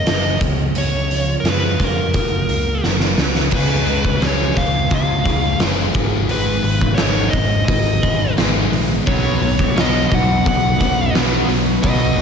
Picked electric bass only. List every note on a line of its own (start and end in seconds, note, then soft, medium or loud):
0.04 0.35 F#1 medium
0.40 0.71 C#2 medium
0.74 1.34 C#2 medium
1.43 1.74 F#2 medium
1.80 2.10 F2 medium
2.14 2.44 F#1 medium
2.48 2.79 C#2 medium
2.83 3.13 F#1 medium
3.17 3.52 C#2 medium
3.52 3.80 C#2 medium
3.86 4.14 C#2 medium
4.20 4.48 C#2 medium
4.56 4.84 C#2 medium
4.91 5.19 C#2 medium
5.25 5.53 C#2 medium
5.60 5.88 F#1 medium
5.94 6.22 G#1 medium
6.29 6.57 G#1 medium
6.64 6.91 G#1 medium
6.97 7.26 G#1 medium
7.33 7.61 G#1 medium
7.68 7.96 G#1 medium
8.02 8.30 G#1 medium
8.36 8.64 G#1 medium
8.70 8.99 A#1 medium
9.07 9.35 B1 medium
9.40 9.68 B1 medium
9.74 10.03 B1 medium
10.11 10.38 B1 medium
10.46 10.73 B1 loud
10.80 11.08 B1 medium
11.13 11.41 B1 loud
11.48 11.76 B1 medium
11.83 12.11 B1 medium
12.17 12.22 B1 medium